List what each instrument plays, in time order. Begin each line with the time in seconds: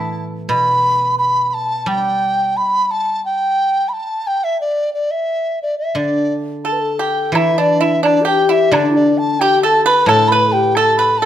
Already playing: guzheng A2 E3 A3 B3 E4, dizi A5
0.49 guzheng B2, dizi B5
1.18 dizi B5
1.50 dizi A5 B5
1.86 guzheng G3, dizi G5
2.57 dizi B5
2.91 dizi A5
3.25 dizi G5
3.88 dizi B5
3.93 dizi A5
4.27 dizi G5
4.44 dizi E5
4.60 dizi D5
4.94 dizi D5
5.11 dizi E5
5.62 dizi D5
5.78 dizi E5
5.95 guzheng D3, dizi D5
6.64 pipa A4, xiao A4, dizi A5
6.72 xiao B4
6.80 xiao A4
6.99 pipa G4, dizi G5
7.32 guzheng E3, xiao E4, pipa E4, dizi E5, high woodblock
7.52 xiao E4
7.58 pipa D4, xiao D4, dizi D5
7.81 pipa E4, dizi E5
8.03 pipa D4, xiao D4, dizi D5, high woodblock
8.21 pipa G4, xiao A4
8.26 xiao G4, dizi G5
8.49 pipa E4, dizi E5
8.71 guzheng D3, pipa D4, xiao D4, dizi D5, high woodblock
8.90 xiao E4
8.95 xiao D4, dizi D5
9.18 dizi A5
9.40 xiao G4, pipa G4, dizi G5, high woodblock
9.62 pipa A4, xiao A4, dizi A5
9.85 pipa B4, xiao B4, dizi B5
10.06 guzheng A2, pipa A4, xiao A4, dizi A5, high woodblock
10.28 xiao B4, pipa B4, dizi B5
10.49 xiao A4, dizi G5
10.54 xiao G4
10.75 pipa A4, xiao A4, dizi A5, high woodblock
10.97 pipa B4, dizi B5
11.18 xiao A4, dizi A5
11.22 pipa A4